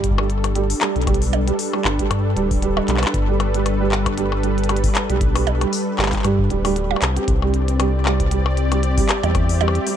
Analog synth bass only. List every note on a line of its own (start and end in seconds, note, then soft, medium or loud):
0.00 0.74 G1 loud
0.96 1.52 B1 medium
1.85 2.02 G1 loud
2.11 2.36 G2 medium
2.36 2.81 D1 medium
2.88 3.05 B1 medium
3.14 4.88 G1 loud
5.10 5.66 B1 medium
5.99 6.16 G1 loud
6.24 6.50 G2 medium
6.50 6.95 D1 medium
7.02 7.19 C2 medium
7.28 9.02 C2 loud
9.23 9.79 E2 medium